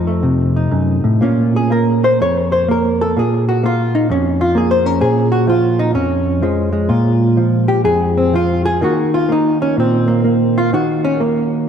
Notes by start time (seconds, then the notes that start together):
Already playing: F2 F3 D#4 A4
0.07 A3
0.23 C3
0.56 D#4
0.71 F#2
1.04 A2
1.21 A#2 A#3 C#4 F4
1.56 G#4
1.70 A#3 A#4
2.04 C5
2.20 F2 C#5
2.52 C5
2.68 A#3 A#4
3.01 A4
3.17 A#2 G#4
3.49 F#4
3.63 A#3 F4
3.95 D#4
4.10 F2 C#4
4.41 F4
4.55 A#3 G#4
4.71 C5
4.86 C#4 A#4
5.01 A#2 G#4
5.32 F#4
5.47 F3 F4
5.79 D#4
5.93 F2 C#4
6.42 F3 G#3
6.73 G#3
6.89 A#2 F4
7.37 F3
7.68 G4
7.84 F2 G#4
8.17 C4
8.34 F3 F4
8.65 G#4
8.81 D#3 A#3 D#4 F#4
9.14 F4
9.29 A#3 D#4
9.62 C#4
9.77 A#2 C4
10.08 A#3
10.24 A#3
10.58 F4
10.73 D#3 F#4
11.04 C#4
11.20 A#3